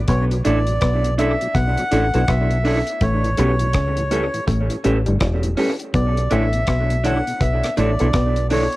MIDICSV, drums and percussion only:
0, 0, Header, 1, 2, 480
1, 0, Start_track
1, 0, Key_signature, 2, "minor"
1, 0, Tempo, 731707
1, 56, Time_signature, 4, 2, 24, 8
1, 5750, End_track
2, 0, Start_track
2, 0, Title_t, "Drums"
2, 51, Note_on_c, 9, 42, 90
2, 54, Note_on_c, 9, 36, 113
2, 117, Note_off_c, 9, 42, 0
2, 120, Note_off_c, 9, 36, 0
2, 205, Note_on_c, 9, 42, 47
2, 271, Note_off_c, 9, 42, 0
2, 295, Note_on_c, 9, 42, 68
2, 360, Note_off_c, 9, 42, 0
2, 438, Note_on_c, 9, 42, 51
2, 503, Note_off_c, 9, 42, 0
2, 531, Note_on_c, 9, 42, 80
2, 537, Note_on_c, 9, 36, 100
2, 539, Note_on_c, 9, 37, 108
2, 597, Note_off_c, 9, 42, 0
2, 602, Note_off_c, 9, 36, 0
2, 604, Note_off_c, 9, 37, 0
2, 685, Note_on_c, 9, 42, 57
2, 751, Note_off_c, 9, 42, 0
2, 779, Note_on_c, 9, 42, 67
2, 844, Note_off_c, 9, 42, 0
2, 926, Note_on_c, 9, 42, 49
2, 991, Note_off_c, 9, 42, 0
2, 1016, Note_on_c, 9, 36, 106
2, 1016, Note_on_c, 9, 42, 92
2, 1081, Note_off_c, 9, 36, 0
2, 1082, Note_off_c, 9, 42, 0
2, 1164, Note_on_c, 9, 42, 51
2, 1230, Note_off_c, 9, 42, 0
2, 1257, Note_on_c, 9, 42, 66
2, 1322, Note_off_c, 9, 42, 0
2, 1402, Note_on_c, 9, 42, 43
2, 1467, Note_off_c, 9, 42, 0
2, 1495, Note_on_c, 9, 42, 73
2, 1497, Note_on_c, 9, 36, 99
2, 1497, Note_on_c, 9, 37, 104
2, 1560, Note_off_c, 9, 42, 0
2, 1562, Note_off_c, 9, 36, 0
2, 1563, Note_off_c, 9, 37, 0
2, 1644, Note_on_c, 9, 42, 45
2, 1710, Note_off_c, 9, 42, 0
2, 1737, Note_on_c, 9, 46, 71
2, 1803, Note_off_c, 9, 46, 0
2, 1882, Note_on_c, 9, 42, 53
2, 1947, Note_off_c, 9, 42, 0
2, 1974, Note_on_c, 9, 42, 89
2, 1976, Note_on_c, 9, 36, 107
2, 2040, Note_off_c, 9, 42, 0
2, 2042, Note_off_c, 9, 36, 0
2, 2128, Note_on_c, 9, 42, 46
2, 2193, Note_off_c, 9, 42, 0
2, 2214, Note_on_c, 9, 42, 65
2, 2280, Note_off_c, 9, 42, 0
2, 2358, Note_on_c, 9, 42, 53
2, 2423, Note_off_c, 9, 42, 0
2, 2450, Note_on_c, 9, 42, 85
2, 2457, Note_on_c, 9, 36, 104
2, 2457, Note_on_c, 9, 37, 103
2, 2515, Note_off_c, 9, 42, 0
2, 2523, Note_off_c, 9, 36, 0
2, 2523, Note_off_c, 9, 37, 0
2, 2603, Note_on_c, 9, 42, 56
2, 2669, Note_off_c, 9, 42, 0
2, 2697, Note_on_c, 9, 42, 70
2, 2763, Note_off_c, 9, 42, 0
2, 2846, Note_on_c, 9, 42, 48
2, 2912, Note_off_c, 9, 42, 0
2, 2936, Note_on_c, 9, 36, 102
2, 2936, Note_on_c, 9, 42, 92
2, 3002, Note_off_c, 9, 36, 0
2, 3002, Note_off_c, 9, 42, 0
2, 3083, Note_on_c, 9, 42, 52
2, 3148, Note_off_c, 9, 42, 0
2, 3176, Note_on_c, 9, 42, 67
2, 3242, Note_off_c, 9, 42, 0
2, 3320, Note_on_c, 9, 42, 44
2, 3386, Note_off_c, 9, 42, 0
2, 3414, Note_on_c, 9, 42, 74
2, 3417, Note_on_c, 9, 36, 101
2, 3417, Note_on_c, 9, 37, 110
2, 3480, Note_off_c, 9, 42, 0
2, 3482, Note_off_c, 9, 37, 0
2, 3483, Note_off_c, 9, 36, 0
2, 3562, Note_on_c, 9, 42, 48
2, 3628, Note_off_c, 9, 42, 0
2, 3655, Note_on_c, 9, 46, 70
2, 3721, Note_off_c, 9, 46, 0
2, 3802, Note_on_c, 9, 42, 50
2, 3867, Note_off_c, 9, 42, 0
2, 3896, Note_on_c, 9, 42, 88
2, 3897, Note_on_c, 9, 36, 113
2, 3961, Note_off_c, 9, 42, 0
2, 3963, Note_off_c, 9, 36, 0
2, 4049, Note_on_c, 9, 42, 49
2, 4114, Note_off_c, 9, 42, 0
2, 4137, Note_on_c, 9, 42, 66
2, 4203, Note_off_c, 9, 42, 0
2, 4282, Note_on_c, 9, 42, 47
2, 4348, Note_off_c, 9, 42, 0
2, 4374, Note_on_c, 9, 42, 83
2, 4379, Note_on_c, 9, 36, 103
2, 4381, Note_on_c, 9, 37, 102
2, 4439, Note_off_c, 9, 42, 0
2, 4445, Note_off_c, 9, 36, 0
2, 4447, Note_off_c, 9, 37, 0
2, 4527, Note_on_c, 9, 42, 58
2, 4593, Note_off_c, 9, 42, 0
2, 4621, Note_on_c, 9, 42, 67
2, 4687, Note_off_c, 9, 42, 0
2, 4771, Note_on_c, 9, 42, 50
2, 4836, Note_off_c, 9, 42, 0
2, 4859, Note_on_c, 9, 36, 113
2, 4861, Note_on_c, 9, 42, 94
2, 4924, Note_off_c, 9, 36, 0
2, 4927, Note_off_c, 9, 42, 0
2, 5008, Note_on_c, 9, 42, 56
2, 5014, Note_on_c, 9, 37, 66
2, 5074, Note_off_c, 9, 42, 0
2, 5079, Note_off_c, 9, 37, 0
2, 5098, Note_on_c, 9, 42, 66
2, 5164, Note_off_c, 9, 42, 0
2, 5242, Note_on_c, 9, 42, 46
2, 5307, Note_off_c, 9, 42, 0
2, 5335, Note_on_c, 9, 42, 78
2, 5338, Note_on_c, 9, 36, 101
2, 5338, Note_on_c, 9, 37, 110
2, 5401, Note_off_c, 9, 42, 0
2, 5403, Note_off_c, 9, 37, 0
2, 5404, Note_off_c, 9, 36, 0
2, 5484, Note_on_c, 9, 42, 48
2, 5550, Note_off_c, 9, 42, 0
2, 5577, Note_on_c, 9, 46, 69
2, 5642, Note_off_c, 9, 46, 0
2, 5723, Note_on_c, 9, 42, 52
2, 5750, Note_off_c, 9, 42, 0
2, 5750, End_track
0, 0, End_of_file